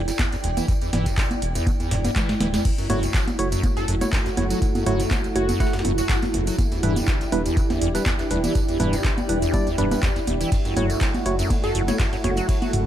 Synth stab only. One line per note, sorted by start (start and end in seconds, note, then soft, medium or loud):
2.90 2.99 A3 medium
2.90 2.99 E4 medium
2.90 2.99 F#4 medium
2.90 2.99 C#5 loud
3.39 3.48 A3 medium
3.39 3.49 E4 medium
3.39 3.48 F#4 medium
3.39 3.49 C#5 loud
4.01 4.10 A3 loud
4.01 4.10 E4 medium
4.01 4.10 F#4 medium
4.01 4.10 C#5 loud
4.37 4.47 A3 medium
4.37 4.47 E4 medium
4.37 4.47 F#4 medium
4.37 4.47 C#5 medium
4.86 5.02 A3 loud
4.86 5.02 E4 medium
4.86 5.02 F#4 medium
4.86 5.02 C#5 loud
5.36 5.45 A3 medium
5.36 5.45 E4 medium
5.36 5.45 F#4 medium
5.36 5.45 C#5 medium
5.60 5.75 A3 medium
5.60 5.75 E4 medium
5.60 5.75 F#4 medium
5.60 5.75 F#5 loud
6.83 6.93 G3 medium
6.83 6.93 D4 medium
6.83 6.93 E4 medium
6.83 6.93 B4 loud
7.32 7.42 G3 loud
7.32 7.42 D4 medium
7.32 7.42 E4 medium
7.32 7.42 B4 loud
7.95 8.03 G3 loud
7.95 8.03 D4 medium
7.95 8.03 E4 medium
7.95 8.03 B4 loud
8.31 8.40 G3 medium
8.31 8.40 D4 medium
8.31 8.40 E4 medium
8.31 8.40 B4 medium
8.80 8.95 G3 loud
8.80 8.95 D4 medium
8.80 8.95 E4 medium
8.80 8.95 B4 loud
9.29 9.39 G3 medium
9.29 9.39 D4 medium
9.29 9.39 E4 medium
9.29 9.39 B4 medium
9.54 9.69 G3 medium
9.54 9.69 D4 medium
9.54 9.69 E4 medium
9.54 9.69 D5 loud
9.78 9.89 G3 loud
9.78 9.89 D4 medium
9.78 9.89 E4 medium
9.78 9.89 B4 loud
9.91 10.00 G3 medium
9.91 10.00 D4 medium
9.91 10.00 E4 medium
9.91 10.00 B4 medium
10.77 10.86 A3 medium
10.77 10.86 E4 medium
10.77 10.86 F#4 medium
10.77 10.86 C#5 loud
11.26 11.35 A3 medium
11.26 11.35 E4 medium
11.26 11.35 F#4 medium
11.26 11.35 C#5 loud
11.88 11.96 A3 loud
11.88 11.96 E4 medium
11.88 11.96 F#4 medium
11.88 11.96 C#5 loud
12.24 12.34 A3 medium
12.24 12.34 E4 medium
12.24 12.34 F#4 medium
12.24 12.34 C#5 medium